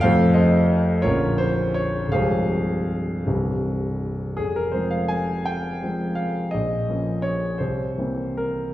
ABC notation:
X:1
M:6/8
L:1/16
Q:3/8=55
K:Fm
V:1 name="Grand piano"
[=Acf]2 [Ace]4 [FBd]2 c2 d2 | [Acf]6 z6 | A B c f a2 g4 f2 | e4 d2 c4 B2 |]
V:2 name="Grand piano" clef=bass
[F,,,F,,F,=A,C]6 [B,,,,B,,,F,B,D]6 | [C,,,C,,F,A,C]6 [C,,,C,,=E,G,C]6 | F,,,2 [F,A,C]6 [F,A,C]4 | B,,,2 [F,B,D]4 C,,2 [=E,B,C]4 |]